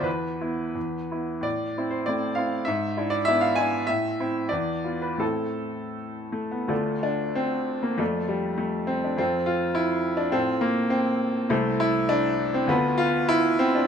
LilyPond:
\new Staff \with { instrumentName = "Grand piano" } { \time 2/4 \key a \minor \tempo 4 = 98 << { e,8 <b e'>8 e,8 <b e'>8 | a,8 <c' e'>8 <a c' e'>8 <c' e'>8 | gis,8 <d' e'>8 <b d' e'>8 <d' e'>8 | a,8 <c' e'>8 e,8 <b f'>8 |
<a, a c' e'>2 | \key d \minor <d, f' a' d''>2 | <f, f' a' d''>2 | <f, f' a' c''>2 |
<a, f' a' c''>2 | \key a \minor <c, e' a' c''>2 | <d, f' a' b'>2 | } \\ { b'4. r8 | d''8. c''16 d''8 f''8 | e''8. d''16 e''16 f''16 gis''8 | e''4 d''8. b'16 |
a'4 r8 a16 b16 | a8 d'8 c'8. bes16 | a8 g8 a8 c'16 d'16 | c'8 f'8 e'8. d'16 |
c'8 bes8 c'8 r8 | a8 e'8 d'8. c'16 | b8 f'8 e'8 c'16 d'16 | } >> }